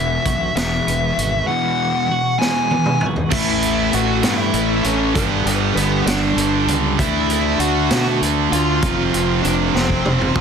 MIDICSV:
0, 0, Header, 1, 6, 480
1, 0, Start_track
1, 0, Tempo, 611621
1, 1165, Time_signature, 6, 3, 24, 8
1, 8169, End_track
2, 0, Start_track
2, 0, Title_t, "Lead electric guitar"
2, 0, Program_c, 0, 29
2, 0, Note_on_c, 0, 76, 84
2, 430, Note_off_c, 0, 76, 0
2, 439, Note_on_c, 0, 76, 83
2, 1152, Note_off_c, 0, 76, 0
2, 1155, Note_on_c, 0, 78, 91
2, 1874, Note_on_c, 0, 80, 95
2, 1903, Note_off_c, 0, 78, 0
2, 2389, Note_off_c, 0, 80, 0
2, 2603, Note_on_c, 0, 64, 72
2, 2608, Note_on_c, 0, 76, 93
2, 3054, Note_off_c, 0, 64, 0
2, 3091, Note_off_c, 0, 76, 0
2, 3091, Note_on_c, 0, 66, 75
2, 3094, Note_on_c, 0, 78, 102
2, 3312, Note_off_c, 0, 66, 0
2, 3330, Note_on_c, 0, 64, 73
2, 3332, Note_off_c, 0, 78, 0
2, 3335, Note_on_c, 0, 76, 99
2, 3777, Note_off_c, 0, 64, 0
2, 3807, Note_on_c, 0, 61, 71
2, 3812, Note_on_c, 0, 73, 72
2, 3825, Note_off_c, 0, 76, 0
2, 4031, Note_off_c, 0, 61, 0
2, 4039, Note_off_c, 0, 73, 0
2, 4042, Note_on_c, 0, 71, 84
2, 4045, Note_on_c, 0, 59, 55
2, 4492, Note_off_c, 0, 59, 0
2, 4503, Note_off_c, 0, 71, 0
2, 4513, Note_on_c, 0, 71, 81
2, 4520, Note_on_c, 0, 59, 66
2, 4746, Note_off_c, 0, 59, 0
2, 4756, Note_off_c, 0, 71, 0
2, 4759, Note_on_c, 0, 74, 89
2, 4764, Note_on_c, 0, 62, 74
2, 5271, Note_off_c, 0, 74, 0
2, 5273, Note_off_c, 0, 62, 0
2, 5492, Note_on_c, 0, 76, 97
2, 5506, Note_on_c, 0, 64, 71
2, 5943, Note_off_c, 0, 64, 0
2, 5961, Note_off_c, 0, 76, 0
2, 5964, Note_on_c, 0, 78, 90
2, 5972, Note_on_c, 0, 66, 69
2, 6412, Note_off_c, 0, 78, 0
2, 6416, Note_off_c, 0, 66, 0
2, 6690, Note_on_c, 0, 77, 99
2, 6695, Note_on_c, 0, 65, 71
2, 7373, Note_off_c, 0, 77, 0
2, 7376, Note_off_c, 0, 65, 0
2, 7397, Note_on_c, 0, 74, 88
2, 7403, Note_on_c, 0, 62, 75
2, 7622, Note_off_c, 0, 74, 0
2, 7625, Note_off_c, 0, 62, 0
2, 7644, Note_on_c, 0, 72, 90
2, 7648, Note_on_c, 0, 60, 67
2, 8150, Note_off_c, 0, 72, 0
2, 8152, Note_off_c, 0, 60, 0
2, 8169, End_track
3, 0, Start_track
3, 0, Title_t, "Clean electric guitar"
3, 0, Program_c, 1, 27
3, 0, Note_on_c, 1, 40, 71
3, 202, Note_on_c, 1, 66, 72
3, 432, Note_on_c, 1, 56, 69
3, 684, Note_on_c, 1, 59, 70
3, 912, Note_off_c, 1, 66, 0
3, 921, Note_on_c, 1, 66, 75
3, 923, Note_off_c, 1, 40, 0
3, 1171, Note_on_c, 1, 40, 73
3, 1640, Note_off_c, 1, 56, 0
3, 1650, Note_off_c, 1, 66, 0
3, 1660, Note_on_c, 1, 66, 73
3, 1886, Note_off_c, 1, 59, 0
3, 1892, Note_on_c, 1, 56, 68
3, 2129, Note_on_c, 1, 59, 71
3, 2352, Note_off_c, 1, 66, 0
3, 2362, Note_on_c, 1, 66, 73
3, 2369, Note_off_c, 1, 40, 0
3, 2604, Note_off_c, 1, 66, 0
3, 2608, Note_off_c, 1, 59, 0
3, 2609, Note_off_c, 1, 56, 0
3, 8169, End_track
4, 0, Start_track
4, 0, Title_t, "Distorted electric guitar"
4, 0, Program_c, 2, 30
4, 0, Note_on_c, 2, 40, 81
4, 0, Note_on_c, 2, 47, 98
4, 0, Note_on_c, 2, 52, 97
4, 189, Note_off_c, 2, 40, 0
4, 192, Note_off_c, 2, 47, 0
4, 193, Note_off_c, 2, 52, 0
4, 205, Note_on_c, 2, 40, 70
4, 209, Note_on_c, 2, 47, 82
4, 421, Note_off_c, 2, 40, 0
4, 422, Note_off_c, 2, 47, 0
4, 443, Note_on_c, 2, 40, 79
4, 447, Note_on_c, 2, 47, 88
4, 452, Note_on_c, 2, 52, 96
4, 910, Note_off_c, 2, 40, 0
4, 912, Note_off_c, 2, 47, 0
4, 914, Note_off_c, 2, 52, 0
4, 926, Note_on_c, 2, 40, 69
4, 928, Note_on_c, 2, 47, 78
4, 1141, Note_off_c, 2, 40, 0
4, 1142, Note_off_c, 2, 47, 0
4, 1159, Note_on_c, 2, 40, 91
4, 1164, Note_on_c, 2, 47, 105
4, 1172, Note_on_c, 2, 52, 104
4, 1628, Note_off_c, 2, 40, 0
4, 1631, Note_off_c, 2, 47, 0
4, 1635, Note_off_c, 2, 52, 0
4, 1643, Note_on_c, 2, 40, 69
4, 1645, Note_on_c, 2, 47, 82
4, 1861, Note_off_c, 2, 40, 0
4, 1862, Note_off_c, 2, 47, 0
4, 1872, Note_on_c, 2, 40, 82
4, 1880, Note_on_c, 2, 47, 87
4, 1885, Note_on_c, 2, 52, 95
4, 2345, Note_off_c, 2, 40, 0
4, 2349, Note_off_c, 2, 47, 0
4, 2351, Note_off_c, 2, 52, 0
4, 2359, Note_on_c, 2, 40, 77
4, 2359, Note_on_c, 2, 47, 82
4, 2579, Note_off_c, 2, 40, 0
4, 2579, Note_off_c, 2, 47, 0
4, 2590, Note_on_c, 2, 45, 85
4, 2608, Note_on_c, 2, 52, 100
4, 2616, Note_on_c, 2, 57, 96
4, 3784, Note_off_c, 2, 45, 0
4, 3789, Note_off_c, 2, 57, 0
4, 3793, Note_off_c, 2, 52, 0
4, 3798, Note_on_c, 2, 57, 85
4, 3812, Note_on_c, 2, 52, 77
4, 3825, Note_on_c, 2, 45, 69
4, 4028, Note_off_c, 2, 57, 0
4, 4035, Note_off_c, 2, 52, 0
4, 4036, Note_on_c, 2, 43, 88
4, 4041, Note_off_c, 2, 45, 0
4, 4049, Note_on_c, 2, 50, 103
4, 4059, Note_on_c, 2, 55, 99
4, 5226, Note_off_c, 2, 43, 0
4, 5231, Note_off_c, 2, 55, 0
4, 5232, Note_off_c, 2, 50, 0
4, 5241, Note_on_c, 2, 55, 88
4, 5256, Note_on_c, 2, 50, 79
4, 5267, Note_on_c, 2, 43, 71
4, 5467, Note_off_c, 2, 50, 0
4, 5468, Note_off_c, 2, 55, 0
4, 5476, Note_on_c, 2, 50, 92
4, 5482, Note_off_c, 2, 43, 0
4, 5491, Note_on_c, 2, 57, 98
4, 5502, Note_on_c, 2, 62, 111
4, 6664, Note_off_c, 2, 50, 0
4, 6673, Note_off_c, 2, 62, 0
4, 6682, Note_on_c, 2, 62, 81
4, 6698, Note_off_c, 2, 57, 0
4, 6701, Note_on_c, 2, 57, 78
4, 6712, Note_on_c, 2, 50, 71
4, 6908, Note_off_c, 2, 62, 0
4, 6922, Note_off_c, 2, 50, 0
4, 6930, Note_on_c, 2, 41, 94
4, 6948, Note_on_c, 2, 48, 95
4, 6953, Note_off_c, 2, 57, 0
4, 6956, Note_on_c, 2, 53, 102
4, 8106, Note_off_c, 2, 53, 0
4, 8109, Note_off_c, 2, 41, 0
4, 8115, Note_on_c, 2, 53, 91
4, 8118, Note_off_c, 2, 48, 0
4, 8131, Note_on_c, 2, 48, 85
4, 8142, Note_on_c, 2, 41, 71
4, 8169, Note_off_c, 2, 41, 0
4, 8169, Note_off_c, 2, 48, 0
4, 8169, Note_off_c, 2, 53, 0
4, 8169, End_track
5, 0, Start_track
5, 0, Title_t, "Fingered electric bass"
5, 0, Program_c, 3, 33
5, 0, Note_on_c, 3, 28, 83
5, 134, Note_off_c, 3, 28, 0
5, 200, Note_on_c, 3, 35, 80
5, 378, Note_off_c, 3, 35, 0
5, 435, Note_on_c, 3, 28, 89
5, 615, Note_off_c, 3, 28, 0
5, 684, Note_on_c, 3, 28, 84
5, 861, Note_off_c, 3, 28, 0
5, 922, Note_on_c, 3, 32, 86
5, 1100, Note_off_c, 3, 32, 0
5, 2602, Note_on_c, 3, 33, 89
5, 3053, Note_off_c, 3, 33, 0
5, 3091, Note_on_c, 3, 33, 86
5, 3311, Note_off_c, 3, 33, 0
5, 3318, Note_on_c, 3, 43, 89
5, 3544, Note_off_c, 3, 43, 0
5, 3559, Note_on_c, 3, 33, 89
5, 3785, Note_off_c, 3, 33, 0
5, 3800, Note_on_c, 3, 33, 83
5, 4025, Note_off_c, 3, 33, 0
5, 4043, Note_on_c, 3, 31, 98
5, 4267, Note_off_c, 3, 31, 0
5, 4277, Note_on_c, 3, 31, 93
5, 4503, Note_off_c, 3, 31, 0
5, 4516, Note_on_c, 3, 31, 92
5, 4742, Note_off_c, 3, 31, 0
5, 4755, Note_on_c, 3, 31, 88
5, 4982, Note_off_c, 3, 31, 0
5, 4992, Note_on_c, 3, 31, 86
5, 5220, Note_off_c, 3, 31, 0
5, 5233, Note_on_c, 3, 37, 81
5, 5460, Note_off_c, 3, 37, 0
5, 5484, Note_on_c, 3, 38, 102
5, 5932, Note_off_c, 3, 38, 0
5, 5956, Note_on_c, 3, 38, 90
5, 6182, Note_off_c, 3, 38, 0
5, 6205, Note_on_c, 3, 47, 89
5, 6426, Note_off_c, 3, 47, 0
5, 6445, Note_on_c, 3, 38, 88
5, 6666, Note_off_c, 3, 38, 0
5, 6686, Note_on_c, 3, 38, 88
5, 6906, Note_off_c, 3, 38, 0
5, 6925, Note_on_c, 3, 29, 97
5, 7145, Note_off_c, 3, 29, 0
5, 7170, Note_on_c, 3, 29, 82
5, 7388, Note_off_c, 3, 29, 0
5, 7412, Note_on_c, 3, 29, 93
5, 7628, Note_off_c, 3, 29, 0
5, 7646, Note_on_c, 3, 29, 86
5, 7865, Note_off_c, 3, 29, 0
5, 7891, Note_on_c, 3, 29, 85
5, 8108, Note_off_c, 3, 29, 0
5, 8126, Note_on_c, 3, 32, 91
5, 8169, Note_off_c, 3, 32, 0
5, 8169, End_track
6, 0, Start_track
6, 0, Title_t, "Drums"
6, 199, Note_on_c, 9, 42, 60
6, 200, Note_on_c, 9, 36, 67
6, 278, Note_off_c, 9, 42, 0
6, 279, Note_off_c, 9, 36, 0
6, 444, Note_on_c, 9, 42, 77
6, 449, Note_on_c, 9, 38, 107
6, 522, Note_off_c, 9, 42, 0
6, 527, Note_off_c, 9, 38, 0
6, 689, Note_on_c, 9, 42, 60
6, 768, Note_off_c, 9, 42, 0
6, 930, Note_on_c, 9, 42, 66
6, 1009, Note_off_c, 9, 42, 0
6, 1893, Note_on_c, 9, 38, 59
6, 1971, Note_off_c, 9, 38, 0
6, 2126, Note_on_c, 9, 48, 69
6, 2204, Note_off_c, 9, 48, 0
6, 2241, Note_on_c, 9, 47, 69
6, 2319, Note_off_c, 9, 47, 0
6, 2360, Note_on_c, 9, 45, 83
6, 2439, Note_off_c, 9, 45, 0
6, 2481, Note_on_c, 9, 43, 76
6, 2559, Note_off_c, 9, 43, 0
6, 2600, Note_on_c, 9, 49, 113
6, 2604, Note_on_c, 9, 36, 111
6, 2678, Note_off_c, 9, 49, 0
6, 2683, Note_off_c, 9, 36, 0
6, 2844, Note_on_c, 9, 42, 69
6, 2923, Note_off_c, 9, 42, 0
6, 3083, Note_on_c, 9, 42, 65
6, 3162, Note_off_c, 9, 42, 0
6, 3319, Note_on_c, 9, 42, 90
6, 3324, Note_on_c, 9, 38, 109
6, 3397, Note_off_c, 9, 42, 0
6, 3402, Note_off_c, 9, 38, 0
6, 3560, Note_on_c, 9, 42, 70
6, 3638, Note_off_c, 9, 42, 0
6, 3801, Note_on_c, 9, 42, 73
6, 3879, Note_off_c, 9, 42, 0
6, 4045, Note_on_c, 9, 36, 109
6, 4046, Note_on_c, 9, 42, 99
6, 4124, Note_off_c, 9, 36, 0
6, 4125, Note_off_c, 9, 42, 0
6, 4290, Note_on_c, 9, 42, 76
6, 4368, Note_off_c, 9, 42, 0
6, 4529, Note_on_c, 9, 42, 76
6, 4608, Note_off_c, 9, 42, 0
6, 4765, Note_on_c, 9, 42, 104
6, 4770, Note_on_c, 9, 38, 104
6, 4844, Note_off_c, 9, 42, 0
6, 4848, Note_off_c, 9, 38, 0
6, 5005, Note_on_c, 9, 42, 77
6, 5083, Note_off_c, 9, 42, 0
6, 5244, Note_on_c, 9, 42, 74
6, 5323, Note_off_c, 9, 42, 0
6, 5486, Note_on_c, 9, 36, 108
6, 5487, Note_on_c, 9, 42, 95
6, 5565, Note_off_c, 9, 36, 0
6, 5566, Note_off_c, 9, 42, 0
6, 5726, Note_on_c, 9, 42, 71
6, 5805, Note_off_c, 9, 42, 0
6, 5962, Note_on_c, 9, 42, 68
6, 6041, Note_off_c, 9, 42, 0
6, 6204, Note_on_c, 9, 42, 87
6, 6208, Note_on_c, 9, 38, 114
6, 6282, Note_off_c, 9, 42, 0
6, 6287, Note_off_c, 9, 38, 0
6, 6455, Note_on_c, 9, 42, 67
6, 6534, Note_off_c, 9, 42, 0
6, 6692, Note_on_c, 9, 42, 66
6, 6770, Note_off_c, 9, 42, 0
6, 6924, Note_on_c, 9, 42, 91
6, 6928, Note_on_c, 9, 36, 113
6, 7003, Note_off_c, 9, 42, 0
6, 7006, Note_off_c, 9, 36, 0
6, 7172, Note_on_c, 9, 42, 68
6, 7251, Note_off_c, 9, 42, 0
6, 7412, Note_on_c, 9, 42, 65
6, 7491, Note_off_c, 9, 42, 0
6, 7658, Note_on_c, 9, 38, 61
6, 7736, Note_off_c, 9, 38, 0
6, 7768, Note_on_c, 9, 36, 54
6, 7847, Note_off_c, 9, 36, 0
6, 7891, Note_on_c, 9, 47, 78
6, 7969, Note_off_c, 9, 47, 0
6, 8015, Note_on_c, 9, 45, 72
6, 8093, Note_off_c, 9, 45, 0
6, 8128, Note_on_c, 9, 36, 94
6, 8169, Note_off_c, 9, 36, 0
6, 8169, End_track
0, 0, End_of_file